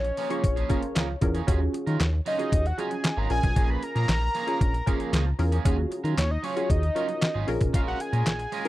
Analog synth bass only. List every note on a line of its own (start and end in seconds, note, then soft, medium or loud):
0.00 0.12 A#1 medium
0.44 0.64 A#1 medium
0.95 1.16 C#2 medium
1.22 1.42 E2 loud
1.48 1.68 D#2 loud
1.87 1.97 D#3 loud
2.00 2.21 D#2 medium
2.52 2.73 D#2 medium
3.17 3.28 G#1 loud
3.30 3.41 A#1 loud
3.43 3.54 B1 medium
3.57 3.77 A#1 loud
3.96 4.06 A#2 medium
4.08 4.29 A#1 loud
4.61 4.81 A#1 medium
5.13 5.33 C#2 medium
5.39 5.60 E2 loud
5.65 5.86 D#2 loud
6.04 6.15 D#3 medium
6.17 6.38 D#2 medium
6.70 6.90 D#2 loud
7.35 7.45 G#1 medium
7.48 7.58 A#1 loud
7.61 7.71 B1 medium
7.74 7.94 A#1 loud
8.13 8.23 A#2 loud
8.26 8.47 A#1 medium